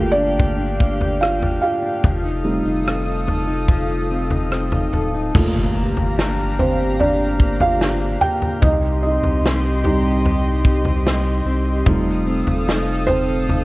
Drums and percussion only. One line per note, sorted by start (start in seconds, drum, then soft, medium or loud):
0.39 kick medium
0.39 floor tom medium
0.80 kick medium
1.01 floor tom medium
1.23 cross-stick medium
1.42 floor tom medium
2.04 kick medium
2.04 floor tom loud
2.88 cross-stick loud
3.28 floor tom medium
3.68 kick medium
3.68 floor tom medium
4.31 floor tom medium
4.52 cross-stick medium
4.72 floor tom medium
4.93 floor tom medium
5.35 kick medium
5.35 floor tom loud
5.35 crash medium
5.97 floor tom medium
6.19 snare loud
6.59 floor tom medium
7.00 floor tom medium
7.40 kick medium
7.60 floor tom medium
7.81 snare loud
8.21 floor tom medium
8.42 floor tom medium
8.62 kick loud
8.62 floor tom loud
9.23 floor tom medium
9.46 snare loud
9.85 floor tom medium
10.26 floor tom medium
10.65 kick medium
10.85 floor tom medium
11.07 snare loud
11.86 kick loud
11.86 floor tom loud
12.47 floor tom medium
12.69 snare loud
13.08 floor tom medium
13.49 floor tom medium